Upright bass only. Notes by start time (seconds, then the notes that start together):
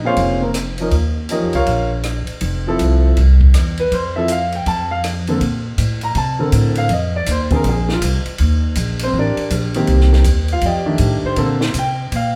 Already playing: A#1
0.17 F1
0.91 D#2
1.42 F2
1.53 C#2
1.67 A#1
2.29 muted upright bass stroke
2.41 F1
2.80 C2
3.17 C2
3.54 E2
3.92 F2
4.66 F2
5.41 A#2
5.78 A2
6.15 C3
6.52 A2
6.89 F2
7.27 D#2
7.64 A#1
8.02 C2
8.25 muted upright bass stroke
8.39 D#2
8.76 A#1
9.14 A1
9.36 muted upright bass stroke
9.51 A#1
9.88 C2
10.25 D#2
10.62 F2
10.99 A2
11.23 muted upright bass stroke
11.36 A#2
11.74 C3
12.12 A#2